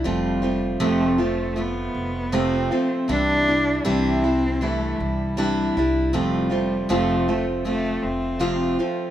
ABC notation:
X:1
M:4/4
L:1/16
Q:1/4=79
K:Flyd
V:1 name="Cello"
G,4 A,2 A,2 B,4 C3 z | D4 C4 A,2 G,4 z2 | G,4 A,2 A,2 A,2 C4 z2 |]
V:2 name="Steel-string acoustic guitar"
[F,,C,F,A,CF]2 [F,A,CF]2 [F,,C,F,A,CF]2 [F,A,CF]2 [F,A,F]4 [F,,C,F,A,CF]2 [F,A,CF]2 | [C,E,G,DE]2 [G,DE]2 [C,E,G,DE]2 [G,DE]2 [E,G,DE]4 [C,E,G,DE]2 [G,DE]2 | [F,,C,F,A,CF]2 [F,A,CF]2 [F,,C,F,A,CF]2 [F,A,CF]2 [F,A,CF]4 [F,,C,F,A,CF]2 [F,A,CF]2 |]
V:3 name="Upright bass" clef=bass
F,,,4 F,,,6 F,,,4 z2 | C,,4 C,,6 C,,4 C,,2 | F,,,4 F,,,6 F,,,4 z2 |]